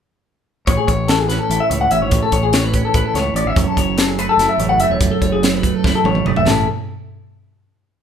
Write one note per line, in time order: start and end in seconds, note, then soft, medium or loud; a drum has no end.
0.67 0.76 A1 medium
0.67 1.70 A2 medium
0.67 0.78 C#5 medium
0.67 kick loud
0.67 closed hi-hat medium
0.77 0.88 G#4 medium
0.87 1.38 A1 medium
0.87 1.09 C#5 medium
0.87 kick medium
0.87 closed hi-hat medium
1.08 2.53 E3 medium
1.08 1.19 A4 medium
1.08 snare loud
1.08 closed hi-hat medium
1.19 1.28 G#4 medium
1.29 1.91 C#4 medium
1.29 1.39 B4 medium
1.29 snare soft
1.29 closed hi-hat medium
1.39 1.60 A4 medium
1.50 1.58 A1 medium
1.50 2.95 E4 medium
1.50 closed hi-hat medium
1.60 1.70 E5 medium
1.70 1.87 C#2 medium
1.70 2.10 A2 medium
1.70 1.81 C#5 medium
1.70 closed hi-hat medium
1.81 1.91 F#5 medium
1.91 2.00 A1 medium
1.91 2.75 C#4 medium
1.91 2.02 E5 medium
1.91 closed hi-hat medium
2.01 2.10 G#1 medium
2.01 2.23 C#5 medium
2.11 2.20 A1 medium
2.11 3.14 A2 medium
2.11 kick loud
2.11 closed hi-hat medium
2.23 2.33 A4 medium
2.32 2.82 A1 medium
2.32 2.43 C#5 medium
2.32 kick medium
2.32 closed hi-hat medium
2.43 2.53 G#4 medium
2.53 3.97 E3 medium
2.53 2.64 C#5 medium
2.53 snare loud
2.53 closed hi-hat medium
2.64 2.84 B4 medium
2.74 3.36 C#4 medium
2.74 kick medium
2.74 closed hi-hat medium
2.85 2.95 A4 medium
2.94 3.03 A1 medium
2.94 3.59 E4 medium
2.94 3.06 B4 medium
2.94 kick medium
2.94 closed hi-hat medium
3.06 3.15 A4 medium
3.14 3.31 C#2 medium
3.14 3.54 A2 medium
3.14 3.36 C#5 medium
3.14 snare soft
3.14 closed hi-hat medium
3.34 3.43 A1 medium
3.34 4.19 C#4 medium
3.34 3.47 D5 medium
3.34 closed hi-hat medium
3.44 3.53 G#1 medium
3.44 3.57 E5 medium
3.56 3.65 F#1 medium
3.56 5.00 F#2 medium
3.56 3.67 C#5 medium
3.56 kick loud
3.56 closed hi-hat medium
3.67 3.77 A4 medium
3.77 4.27 F#1 medium
3.77 3.98 C#5 medium
3.77 kick medium
3.77 closed hi-hat medium
3.97 4.98 F#3 medium
3.97 4.08 A4 medium
3.97 snare loud
3.97 closed hi-hat medium
4.08 4.19 G#4 medium
4.19 4.83 A3 medium
4.19 4.29 B4 medium
4.19 closed hi-hat medium
4.29 4.49 A4 medium
4.37 4.46 F#1 medium
4.37 5.04 E4 medium
4.37 snare soft
4.37 closed hi-hat medium
4.49 4.60 E5 medium
4.58 4.75 A1 medium
4.58 4.99 C#3 medium
4.58 4.69 C#5 medium
4.58 closed hi-hat medium
4.69 4.80 F#5 medium
4.78 4.87 F#1 medium
4.78 4.91 E5 medium
4.78 closed hi-hat medium
4.83 5.64 A3 medium
4.90 4.98 E1 medium
4.90 5.12 C#5 medium
5.00 5.09 F#1 medium
5.00 6.46 F#2 medium
5.00 kick loud
5.00 closed hi-hat medium
5.11 5.22 A4 medium
5.22 5.72 F#1 medium
5.22 5.32 C#5 medium
5.22 kick medium
5.22 closed hi-hat medium
5.32 5.42 G#4 medium
5.43 6.44 F#3 medium
5.43 5.54 C#5 medium
5.43 snare loud
5.43 closed hi-hat medium
5.54 5.75 B4 medium
5.63 6.26 A3 medium
5.63 kick medium
5.63 closed hi-hat medium
5.75 5.85 A4 medium
5.84 5.92 F#1 medium
5.84 6.44 E4 medium
5.84 5.95 B4 medium
5.84 kick loud
5.84 snare medium
5.95 6.05 A4 medium
6.04 6.21 A1 medium
6.04 6.45 C#3 medium
6.04 6.27 C#5 medium
6.04 high tom medium
6.15 mid tom medium
6.26 6.34 F#1 medium
6.26 6.50 A3 medium
6.26 6.36 D5 medium
6.26 mid tom medium
6.36 6.44 E1 medium
6.36 6.47 E5 medium
6.36 floor tom medium
6.46 6.65 A1 medium
6.46 6.66 A2 medium
6.46 6.66 E3 medium
6.46 6.66 A4 medium
6.46 snare loud
6.46 floor tom medium
6.50 6.67 C#4 medium
6.50 6.67 E4 medium
6.50 6.67 G#4 soft